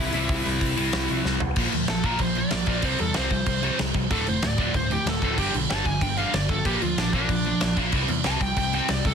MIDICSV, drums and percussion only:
0, 0, Header, 1, 2, 480
1, 0, Start_track
1, 0, Tempo, 318302
1, 445, Time_signature, 4, 2, 24, 8
1, 13783, End_track
2, 0, Start_track
2, 0, Title_t, "Drums"
2, 190, Note_on_c, 9, 46, 66
2, 341, Note_off_c, 9, 46, 0
2, 439, Note_on_c, 9, 46, 81
2, 441, Note_on_c, 9, 36, 127
2, 590, Note_off_c, 9, 46, 0
2, 591, Note_off_c, 9, 36, 0
2, 687, Note_on_c, 9, 46, 58
2, 838, Note_off_c, 9, 46, 0
2, 923, Note_on_c, 9, 36, 75
2, 924, Note_on_c, 9, 46, 74
2, 1074, Note_off_c, 9, 36, 0
2, 1075, Note_off_c, 9, 46, 0
2, 1168, Note_on_c, 9, 46, 58
2, 1319, Note_off_c, 9, 46, 0
2, 1398, Note_on_c, 9, 46, 80
2, 1406, Note_on_c, 9, 38, 112
2, 1549, Note_off_c, 9, 46, 0
2, 1557, Note_off_c, 9, 38, 0
2, 1634, Note_on_c, 9, 46, 50
2, 1784, Note_off_c, 9, 46, 0
2, 1891, Note_on_c, 9, 38, 67
2, 2042, Note_off_c, 9, 38, 0
2, 2118, Note_on_c, 9, 43, 92
2, 2269, Note_off_c, 9, 43, 0
2, 2351, Note_on_c, 9, 49, 121
2, 2351, Note_on_c, 9, 57, 76
2, 2360, Note_on_c, 9, 36, 124
2, 2502, Note_off_c, 9, 49, 0
2, 2502, Note_off_c, 9, 57, 0
2, 2511, Note_off_c, 9, 36, 0
2, 2600, Note_on_c, 9, 57, 62
2, 2751, Note_off_c, 9, 57, 0
2, 2830, Note_on_c, 9, 57, 71
2, 2837, Note_on_c, 9, 38, 101
2, 2980, Note_off_c, 9, 57, 0
2, 2988, Note_off_c, 9, 38, 0
2, 3069, Note_on_c, 9, 57, 63
2, 3073, Note_on_c, 9, 36, 92
2, 3220, Note_off_c, 9, 57, 0
2, 3224, Note_off_c, 9, 36, 0
2, 3298, Note_on_c, 9, 57, 77
2, 3312, Note_on_c, 9, 36, 84
2, 3449, Note_off_c, 9, 57, 0
2, 3462, Note_off_c, 9, 36, 0
2, 3546, Note_on_c, 9, 57, 54
2, 3697, Note_off_c, 9, 57, 0
2, 3778, Note_on_c, 9, 57, 85
2, 3785, Note_on_c, 9, 38, 114
2, 3928, Note_off_c, 9, 57, 0
2, 3936, Note_off_c, 9, 38, 0
2, 4012, Note_on_c, 9, 57, 70
2, 4027, Note_on_c, 9, 36, 85
2, 4163, Note_off_c, 9, 57, 0
2, 4178, Note_off_c, 9, 36, 0
2, 4254, Note_on_c, 9, 57, 94
2, 4265, Note_on_c, 9, 36, 94
2, 4405, Note_off_c, 9, 57, 0
2, 4416, Note_off_c, 9, 36, 0
2, 4502, Note_on_c, 9, 57, 70
2, 4653, Note_off_c, 9, 57, 0
2, 4735, Note_on_c, 9, 57, 82
2, 4742, Note_on_c, 9, 38, 108
2, 4886, Note_off_c, 9, 57, 0
2, 4893, Note_off_c, 9, 38, 0
2, 4980, Note_on_c, 9, 57, 58
2, 4988, Note_on_c, 9, 36, 85
2, 5131, Note_off_c, 9, 57, 0
2, 5139, Note_off_c, 9, 36, 0
2, 5222, Note_on_c, 9, 57, 83
2, 5227, Note_on_c, 9, 36, 88
2, 5373, Note_off_c, 9, 57, 0
2, 5377, Note_off_c, 9, 36, 0
2, 5468, Note_on_c, 9, 57, 58
2, 5619, Note_off_c, 9, 57, 0
2, 5714, Note_on_c, 9, 57, 80
2, 5721, Note_on_c, 9, 38, 118
2, 5864, Note_off_c, 9, 57, 0
2, 5872, Note_off_c, 9, 38, 0
2, 5941, Note_on_c, 9, 57, 59
2, 5949, Note_on_c, 9, 36, 94
2, 6092, Note_off_c, 9, 57, 0
2, 6100, Note_off_c, 9, 36, 0
2, 6194, Note_on_c, 9, 36, 108
2, 6194, Note_on_c, 9, 57, 84
2, 6345, Note_off_c, 9, 36, 0
2, 6345, Note_off_c, 9, 57, 0
2, 6435, Note_on_c, 9, 57, 61
2, 6585, Note_off_c, 9, 57, 0
2, 6669, Note_on_c, 9, 57, 78
2, 6677, Note_on_c, 9, 38, 112
2, 6820, Note_off_c, 9, 57, 0
2, 6828, Note_off_c, 9, 38, 0
2, 6902, Note_on_c, 9, 57, 63
2, 6911, Note_on_c, 9, 36, 90
2, 7052, Note_off_c, 9, 57, 0
2, 7061, Note_off_c, 9, 36, 0
2, 7152, Note_on_c, 9, 36, 96
2, 7152, Note_on_c, 9, 57, 77
2, 7303, Note_off_c, 9, 36, 0
2, 7303, Note_off_c, 9, 57, 0
2, 7401, Note_on_c, 9, 57, 55
2, 7552, Note_off_c, 9, 57, 0
2, 7639, Note_on_c, 9, 57, 84
2, 7647, Note_on_c, 9, 38, 116
2, 7790, Note_off_c, 9, 57, 0
2, 7797, Note_off_c, 9, 38, 0
2, 7872, Note_on_c, 9, 36, 94
2, 7882, Note_on_c, 9, 57, 66
2, 8023, Note_off_c, 9, 36, 0
2, 8033, Note_off_c, 9, 57, 0
2, 8110, Note_on_c, 9, 36, 99
2, 8115, Note_on_c, 9, 57, 101
2, 8261, Note_off_c, 9, 36, 0
2, 8266, Note_off_c, 9, 57, 0
2, 8357, Note_on_c, 9, 57, 68
2, 8508, Note_off_c, 9, 57, 0
2, 8596, Note_on_c, 9, 57, 76
2, 8604, Note_on_c, 9, 38, 116
2, 8747, Note_off_c, 9, 57, 0
2, 8755, Note_off_c, 9, 38, 0
2, 8830, Note_on_c, 9, 36, 87
2, 8834, Note_on_c, 9, 57, 61
2, 8980, Note_off_c, 9, 36, 0
2, 8985, Note_off_c, 9, 57, 0
2, 9069, Note_on_c, 9, 36, 95
2, 9075, Note_on_c, 9, 57, 83
2, 9219, Note_off_c, 9, 36, 0
2, 9226, Note_off_c, 9, 57, 0
2, 9310, Note_on_c, 9, 57, 56
2, 9460, Note_off_c, 9, 57, 0
2, 9554, Note_on_c, 9, 57, 81
2, 9561, Note_on_c, 9, 38, 114
2, 9705, Note_off_c, 9, 57, 0
2, 9712, Note_off_c, 9, 38, 0
2, 9788, Note_on_c, 9, 57, 59
2, 9790, Note_on_c, 9, 36, 90
2, 9939, Note_off_c, 9, 57, 0
2, 9940, Note_off_c, 9, 36, 0
2, 10032, Note_on_c, 9, 36, 111
2, 10037, Note_on_c, 9, 57, 84
2, 10182, Note_off_c, 9, 36, 0
2, 10188, Note_off_c, 9, 57, 0
2, 10280, Note_on_c, 9, 57, 60
2, 10431, Note_off_c, 9, 57, 0
2, 10522, Note_on_c, 9, 57, 70
2, 10529, Note_on_c, 9, 38, 102
2, 10673, Note_off_c, 9, 57, 0
2, 10680, Note_off_c, 9, 38, 0
2, 10755, Note_on_c, 9, 36, 85
2, 10759, Note_on_c, 9, 57, 58
2, 10906, Note_off_c, 9, 36, 0
2, 10910, Note_off_c, 9, 57, 0
2, 10990, Note_on_c, 9, 57, 83
2, 10993, Note_on_c, 9, 36, 89
2, 11141, Note_off_c, 9, 57, 0
2, 11144, Note_off_c, 9, 36, 0
2, 11228, Note_on_c, 9, 57, 49
2, 11378, Note_off_c, 9, 57, 0
2, 11469, Note_on_c, 9, 57, 84
2, 11477, Note_on_c, 9, 38, 115
2, 11620, Note_off_c, 9, 57, 0
2, 11628, Note_off_c, 9, 38, 0
2, 11715, Note_on_c, 9, 36, 86
2, 11717, Note_on_c, 9, 57, 63
2, 11866, Note_off_c, 9, 36, 0
2, 11868, Note_off_c, 9, 57, 0
2, 11945, Note_on_c, 9, 57, 85
2, 11955, Note_on_c, 9, 36, 107
2, 12095, Note_off_c, 9, 57, 0
2, 12106, Note_off_c, 9, 36, 0
2, 12188, Note_on_c, 9, 57, 64
2, 12339, Note_off_c, 9, 57, 0
2, 12424, Note_on_c, 9, 57, 83
2, 12431, Note_on_c, 9, 38, 95
2, 12574, Note_off_c, 9, 57, 0
2, 12582, Note_off_c, 9, 38, 0
2, 12679, Note_on_c, 9, 36, 81
2, 12683, Note_on_c, 9, 57, 63
2, 12830, Note_off_c, 9, 36, 0
2, 12834, Note_off_c, 9, 57, 0
2, 12916, Note_on_c, 9, 57, 83
2, 12920, Note_on_c, 9, 36, 86
2, 13067, Note_off_c, 9, 57, 0
2, 13071, Note_off_c, 9, 36, 0
2, 13166, Note_on_c, 9, 57, 62
2, 13317, Note_off_c, 9, 57, 0
2, 13395, Note_on_c, 9, 57, 89
2, 13403, Note_on_c, 9, 38, 113
2, 13546, Note_off_c, 9, 57, 0
2, 13553, Note_off_c, 9, 38, 0
2, 13645, Note_on_c, 9, 57, 67
2, 13646, Note_on_c, 9, 36, 96
2, 13783, Note_off_c, 9, 36, 0
2, 13783, Note_off_c, 9, 57, 0
2, 13783, End_track
0, 0, End_of_file